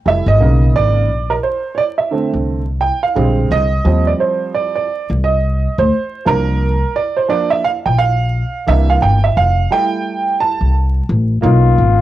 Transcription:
0.05 0.22 F1 medium
0.05 0.36 G3 soft
0.05 0.37 A3 soft
0.05 0.37 E4 medium
0.05 0.26 E5 loud
0.26 0.40 G1 medium
0.26 0.72 D#5 loud
0.40 0.75 B1 medium
0.40 1.06 C#3 medium
0.40 1.05 D#3 medium
0.40 1.06 A#3 medium
0.75 1.09 G#1 medium
0.75 1.32 D5 loud
1.09 1.37 A#1 medium
1.30 1.35 A#4 medium
1.43 1.75 C5 medium
1.75 1.78 C#5 medium
1.75 1.83 D5 medium
1.98 2.31 E5 medium
2.11 2.60 D3 medium
2.11 2.61 A3 medium
2.11 2.61 C4 medium
2.33 2.89 C2 medium
2.81 3.01 G5 medium
3.03 3.52 F5 medium
3.15 3.44 A#1 loud
3.15 3.64 D3 medium
3.15 3.64 G3 medium
3.15 3.65 G#3 medium
3.15 3.65 C4 medium
3.51 3.78 C2 medium
3.51 4.08 D#5 loud
3.84 4.13 D#2 loud
3.84 4.84 F3 medium
3.84 4.85 G3 medium
3.84 4.85 C4 medium
4.07 4.12 D5 medium
4.20 4.52 C5 medium
4.54 4.74 D5 medium
4.76 5.07 D5 medium
5.10 5.65 C2 medium
5.24 5.80 D#5 medium
5.78 5.89 D2 loud
5.78 6.28 C5 medium
6.25 6.82 C2 medium
6.25 6.75 F3 medium
6.25 6.75 A#3 medium
6.25 6.75 D4 medium
6.25 6.98 A#4 loud
6.96 7.17 D5 medium
7.16 7.30 C5 medium
7.28 7.60 F3 medium
7.28 7.60 A#3 soft
7.28 7.60 D4 medium
7.28 7.51 D5 loud
7.50 7.63 E5 loud
7.64 7.69 F5 loud
7.86 8.41 A#1 medium
7.86 7.99 G5 medium
7.98 8.63 F5 loud
8.66 8.95 C2 loud
8.66 9.16 E3 medium
8.66 9.16 A#3 medium
8.66 9.16 D4 medium
8.66 8.90 E5 loud
8.90 9.03 F5 loud
9.02 9.30 G1 medium
9.02 9.22 G5 loud
9.24 9.37 E5 medium
9.37 9.64 F1 medium
9.37 9.72 F5 loud
9.70 10.70 G3 medium
9.70 10.71 A3 medium
9.70 10.71 E4 medium
9.70 10.36 G5 loud
10.40 10.72 A5 loud
10.61 10.99 C2 medium
11.09 11.37 A1 loud
11.42 11.71 B1 loud
11.42 12.01 A#3 medium
11.42 12.01 C#4 medium
11.42 12.01 D#4 medium
11.42 12.01 F4 medium
11.78 12.01 G#1 medium

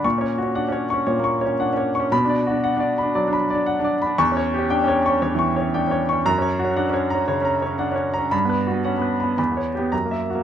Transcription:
0.04 1.05 A#2 medium
0.04 0.32 C#6 medium
0.18 0.38 C#4 soft
0.18 0.49 C#5 soft
0.38 0.66 F#4 soft
0.43 0.64 C#4 soft
0.55 0.69 D4 soft
0.55 0.83 F#5 medium
0.68 0.89 C#4 soft
0.68 1.00 C#5 soft
0.90 1.15 C#4 soft
0.90 1.18 C#6 medium
1.07 2.08 A#2 medium
1.07 1.35 C#5 soft
1.19 1.41 A#3 soft
1.24 1.53 C#6 soft
1.41 1.70 C#5 soft
1.46 1.67 C#4 soft
1.60 1.73 D4 soft
1.60 1.88 F#5 soft
1.73 1.94 C#4 soft
1.77 2.05 C#5 soft
1.95 2.12 C#6 medium
2.00 2.12 C#4 soft
2.12 3.12 B2 medium
2.12 2.40 B5 medium
2.25 2.45 D4 soft
2.29 2.57 D5 medium
2.47 2.74 F#4 soft
2.51 2.71 D4 soft
2.64 2.91 F#5 medium
2.76 2.97 D4 soft
2.76 3.08 D5 medium
2.98 3.26 B5 medium
3.03 3.23 D4 soft
3.15 3.36 F#3 soft
3.15 3.43 D5 medium
3.28 3.49 D4 soft
3.33 3.61 B5 medium
3.50 3.78 D5 soft
3.55 3.75 D4 medium
3.66 3.95 F#5 medium
3.79 4.01 D4 soft
3.84 4.12 D5 medium
4.02 4.19 B5 medium
4.06 4.19 D4 medium
4.18 5.18 E2 medium
4.18 4.46 C#6 medium
4.32 4.53 C#4 soft
4.37 4.64 C#5 medium
4.54 4.81 G4 medium
4.59 4.79 C#4 soft
4.70 4.83 D4 soft
4.70 4.98 G5 medium
4.84 5.04 C#4 medium
4.88 5.15 C#5 medium
5.06 5.30 C#4 soft
5.06 5.32 C#6 medium
5.22 6.23 E2 medium
5.22 5.49 C#5 medium
5.35 5.55 E3 soft
5.35 5.66 C#6 medium
5.56 5.84 C#5 soft
5.60 5.81 C#4 soft
5.74 5.87 D4 soft
5.74 6.02 G5 medium
5.87 6.08 C#4 soft
5.87 6.19 C#5 medium
6.09 6.26 C#4 soft
6.09 6.26 C#6 medium
6.26 7.25 F#2 medium
6.26 6.53 A#5 medium
6.38 6.59 C#4 soft
6.38 6.70 C#5 medium
6.59 6.87 F#4 medium
6.64 6.85 C#4 soft
6.76 6.90 D4 soft
6.76 7.04 F#5 medium
6.90 7.10 C#4 soft
6.90 7.21 C#5 medium
7.10 7.38 A#5 medium
7.15 7.36 C#4 soft
7.28 7.49 C#3 soft
7.28 7.55 C#5 medium
7.41 7.62 C#4 soft
7.41 7.73 A#5 soft
7.62 7.87 C#4 soft
7.62 7.90 C#5 medium
7.79 7.92 D4 soft
7.79 8.07 F#5 soft
7.92 8.13 C#4 soft
7.96 8.25 C#5 soft
8.14 8.32 A#5 medium
8.19 8.32 C#4 soft
8.31 9.34 G2 medium
8.31 8.60 B5 medium
8.45 8.67 B3 soft
8.49 8.78 B4 soft
8.67 8.95 F#4 soft
8.72 8.93 B3 soft
8.85 8.98 C#4 soft
8.85 9.13 F#5 medium
8.98 9.19 B3 soft
8.98 9.30 B4 soft
9.20 9.38 B3 soft
9.20 9.37 B5 soft
9.38 9.90 E2 medium
9.38 9.67 B5 medium
9.52 9.73 B3 soft
9.57 9.85 C#5 soft
9.75 9.92 B3 soft
9.75 9.92 G4 soft
9.92 10.43 F#2 soft
9.92 10.21 A#5 medium
10.05 10.28 A#3 soft
10.11 10.40 E5 soft
10.30 10.43 F#4 soft
10.35 10.43 A#3 soft

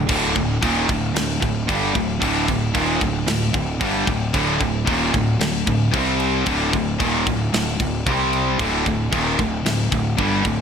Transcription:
0.09 0.34 D1 medium
0.09 0.35 D2 medium
0.09 0.35 A2 loud
0.09 0.36 D3 loud
0.09 kick loud
0.09 crash loud
0.09 crash medium
0.35 0.61 D1 medium
0.35 0.57 D2 medium
0.35 0.57 A2 medium
0.35 kick loud
0.35 crash medium
0.62 0.87 D#1 loud
0.62 0.88 D#2 loud
0.62 0.88 A#2 loud
0.62 0.88 D#3 loud
0.62 kick loud
0.62 crash medium
0.88 1.14 D1 medium
0.88 1.10 D2 medium
0.88 1.10 A2 medium
0.88 kick medium
0.88 crash medium
1.15 1.40 D1 medium
1.15 1.37 D2 medium
1.15 1.38 A2 medium
1.15 snare loud
1.15 crash medium
1.42 1.67 D1 medium
1.42 1.63 D2 medium
1.42 1.63 A2 medium
1.42 kick loud
1.42 crash medium
1.68 1.94 G1 loud
1.68 1.94 G2 medium
1.68 1.94 D3 medium
1.68 1.94 G3 loud
1.68 kick loud
1.68 crash medium
1.94 2.20 D1 medium
1.94 2.16 D2 medium
1.94 2.16 A2 medium
1.94 kick medium
1.94 crash medium
2.21 2.46 D1 medium
2.21 2.47 D2 loud
2.21 2.47 A2 loud
2.21 2.47 D3 loud
2.21 kick loud
2.21 crash medium
2.48 2.73 D1 medium
2.48 2.70 D2 medium
2.48 2.70 A2 medium
2.48 kick medium
2.48 crash medium
2.74 2.99 D#1 medium
2.74 3.00 D#2 loud
2.74 3.00 A#2 loud
2.74 3.00 D#3 loud
2.74 kick loud
2.74 crash loud
3.01 3.26 D1 medium
3.01 3.22 D2 medium
3.01 3.22 A2 medium
3.01 kick medium
3.01 crash medium
3.27 3.52 D1 medium
3.27 3.49 D2 medium
3.27 3.49 A2 medium
3.27 snare loud
3.27 crash medium
3.54 3.79 D1 medium
3.54 3.76 D2 medium
3.54 3.76 A2 medium
3.54 kick loud
3.54 crash medium
3.81 4.06 G1 loud
3.81 4.06 G2 loud
3.81 4.06 D3 loud
3.81 4.07 G3 loud
3.81 kick loud
3.81 crash medium
4.06 4.32 D1 medium
4.06 4.28 D2 medium
4.06 4.28 A2 medium
4.06 kick medium
4.06 crash medium
4.34 4.59 D1 medium
4.34 4.59 D2 medium
4.34 4.59 A2 loud
4.34 4.60 D3 loud
4.34 kick loud
4.34 crash medium
4.60 4.85 D1 medium
4.60 4.82 D2 medium
4.60 4.82 A2 medium
4.60 kick loud
4.60 crash medium
4.86 5.12 D#1 medium
4.86 5.13 D#2 loud
4.86 5.12 A#2 loud
4.86 5.12 D#3 loud
4.86 kick loud
4.86 crash medium
5.13 5.39 D1 medium
5.13 5.35 D2 medium
5.13 5.35 A2 medium
5.13 kick medium
5.13 crash medium
5.39 5.64 D1 medium
5.39 5.61 D2 medium
5.39 5.61 A2 medium
5.39 snare loud
5.39 crash medium
5.66 5.92 D1 medium
5.66 5.88 D2 medium
5.66 5.88 A2 medium
5.66 kick loud
5.66 crash medium
5.92 6.43 C2 loud
5.92 6.45 C3 medium
5.92 6.45 G3 loud
5.92 6.46 C4 loud
5.92 kick loud
5.92 crash medium
6.20 crash medium
6.46 6.71 D1 loud
6.46 6.72 D2 loud
6.46 6.72 A2 loud
6.46 6.72 D3 loud
6.46 kick loud
6.46 crash loud
6.73 6.98 D1 medium
6.73 6.94 D2 medium
6.73 6.94 A2 medium
6.73 kick loud
6.73 crash medium
6.99 7.24 D#1 loud
6.99 7.25 D#2 loud
6.99 7.26 A#2 loud
6.99 7.26 D#3 loud
6.99 kick loud
6.99 crash medium
7.27 7.51 D1 medium
7.27 7.48 D2 medium
7.27 7.48 A2 medium
7.27 kick medium
7.27 crash medium
7.53 7.78 D1 medium
7.53 7.74 D2 medium
7.53 7.74 A2 medium
7.53 snare loud
7.53 crash medium
7.80 8.04 D1 medium
7.80 8.01 D2 medium
7.80 8.01 A2 medium
7.80 kick loud
7.80 crash medium
8.06 8.55 C2 loud
8.06 8.59 C3 medium
8.06 8.59 G3 loud
8.06 8.59 C4 medium
8.06 kick loud
8.06 crash medium
8.33 crash medium
8.59 8.84 D1 medium
8.59 8.85 D2 medium
8.59 8.85 A2 loud
8.59 8.85 D3 loud
8.59 kick loud
8.59 crash medium
8.86 9.11 D1 medium
8.86 9.08 D2 medium
8.86 9.08 A2 medium
8.86 kick medium
8.86 crash medium
9.12 9.37 D#1 medium
9.12 9.38 D#2 loud
9.12 9.38 A#2 loud
9.12 9.38 D#3 loud
9.12 kick loud
9.12 crash medium
9.39 9.64 D1 medium
9.39 9.60 D2 medium
9.39 9.60 A2 medium
9.39 kick medium
9.39 crash medium
9.66 9.90 D1 medium
9.66 9.87 D2 medium
9.66 9.87 A2 medium
9.66 snare loud
9.66 crash medium
9.92 10.17 D1 medium
9.92 10.14 D2 medium
9.92 10.14 A2 medium
9.92 kick medium
9.92 crash medium
10.18 10.43 G1 loud
10.18 10.44 G2 medium
10.18 10.44 D3 loud
10.18 10.44 G3 loud
10.18 kick loud
10.18 crash medium
10.45 10.61 D1 medium
10.45 10.61 D2 medium
10.45 10.61 A2 medium
10.45 kick medium
10.45 crash medium

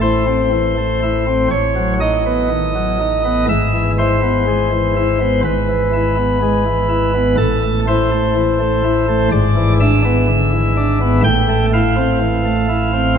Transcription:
0.00 1.48 A1 medium
0.00 1.48 A2 medium
0.00 0.24 E4 soft
0.00 1.48 C5 medium
0.27 0.49 C4 soft
0.52 0.74 E3 soft
0.77 1.00 A3 soft
1.03 1.25 E4 soft
1.27 1.48 C4 soft
1.51 3.45 A1 medium
1.51 3.45 A2 medium
1.51 1.93 C#5 medium
1.76 1.98 F#3 soft
2.00 2.23 D#4 soft
2.00 3.45 D#5 medium
2.26 2.48 B3 soft
2.50 2.72 D#3 medium
2.75 2.97 F#3 soft
3.00 3.22 D#4 medium
3.25 3.46 B3 soft
3.49 5.43 G#1 medium
3.49 5.43 G#2 medium
3.49 3.91 E5 loud
3.74 3.96 E3 soft
3.98 4.20 E4 medium
3.98 5.41 C5 medium
4.22 4.44 B3 soft
4.47 4.69 G#3 soft
4.72 4.94 E3 soft
4.96 5.18 E4 medium
5.21 5.42 B3 soft
5.45 7.35 G#1 medium
5.45 7.35 G#2 soft
5.45 7.35 B4 medium
5.69 5.90 E3 soft
5.93 6.15 E4 soft
6.17 6.39 B3 soft
6.42 6.64 G#3 soft
6.66 6.88 E3 soft
6.89 7.12 E4 medium
7.14 7.35 B3 soft
7.37 9.28 A1 medium
7.37 9.28 A2 medium
7.37 7.80 A4 loud
7.63 7.85 A3 soft
7.88 8.09 E4 medium
7.88 9.29 C5 loud
8.11 8.33 A3 soft
8.36 8.57 E3 soft
8.60 8.82 A3 soft
8.84 9.06 E4 medium
9.08 9.29 A3 soft
9.32 11.21 G#1 medium
9.32 11.21 G#2 medium
9.32 9.73 D5 loud
9.56 9.78 E3 medium
9.80 10.02 D4 medium
9.80 11.21 E5 loud
10.05 10.26 B3 soft
10.27 10.50 D3 medium
10.53 10.74 E3 medium
10.77 10.98 D4 medium
11.01 11.21 B3 medium
11.24 13.18 A1 medium
11.24 13.18 A2 medium
11.24 11.66 G5 loud
11.49 11.70 A3 medium
11.73 11.95 E4 medium
11.73 13.14 F5 loud
11.96 12.18 C4 medium
12.21 12.43 E3 soft
12.45 12.67 A3 soft
12.69 12.91 E4 medium
12.93 13.15 C4 soft

